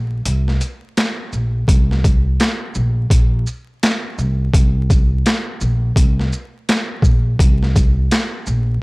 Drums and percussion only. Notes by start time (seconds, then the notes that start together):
0.25 closed hi-hat
0.48 snare
0.61 closed hi-hat, shaker
0.97 snare, clap, closed hi-hat
1.33 shaker
1.68 kick, closed hi-hat
1.91 snare
2.04 kick, closed hi-hat, shaker
2.40 snare, clap, closed hi-hat
2.75 shaker
3.10 kick, closed hi-hat
3.47 shaker
3.83 snare, clap, closed hi-hat
4.18 shaker
4.54 kick, closed hi-hat
4.90 kick, closed hi-hat, shaker
5.26 snare, clap, closed hi-hat
5.61 shaker
5.96 kick, closed hi-hat
6.20 snare
6.33 shaker
6.69 snare, clap, closed hi-hat
7.02 kick, shaker
7.39 kick, closed hi-hat
7.63 snare
7.76 kick, closed hi-hat, shaker
8.11 snare, clap, closed hi-hat
8.46 shaker